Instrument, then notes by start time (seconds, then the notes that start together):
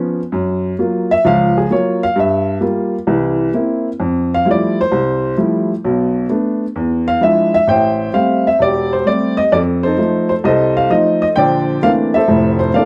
upright piano
Already playing: F3 B3 C#4
0.32 F#2
0.79 F#3 A#3 F4
1.11 E5
1.25 C#2 F3 F5
1.58 G#4
1.70 F#3 A#3 F4 C#5
2.03 F5
2.16 G2 E5
2.61 G3 A#3 F4
3.07 C2 E3
3.54 A#3 C4 E4
4.00 F2
4.34 F5
4.45 F3 G3 A3 E4
4.51 D5
4.81 C5
4.92 C2
5.37 F3 G3 A3 E4
5.84 B1 B2
6.29 A3 B3 D4
6.76 E2
7.08 F5
7.21 F3 G#3 D4 E4 E5
7.54 E5
7.68 A1 C5 E5 G5
8.13 G3 A3 C4 F5
8.47 E5
8.59 E1 D5
8.63 G4
8.93 C5
9.05 G3 A3 C4 D5
9.37 D#5
9.52 F2 A4 D5
9.83 D#4 A4 C5
9.98 F3 A3 D#4
10.29 C5
10.44 C2 A4 C5 D#5
10.77 F5
10.90 F3 A3 D#4 D#5
11.22 D#5
11.36 A#1 D3 C5 D5 G5
11.82 E3 A3 A#3 C4 D4 F5
12.14 A4 C5 E5
12.28 F1 A2
12.59 C5
12.74 E3 A3 A#3 C4 D4 A4 D5 F5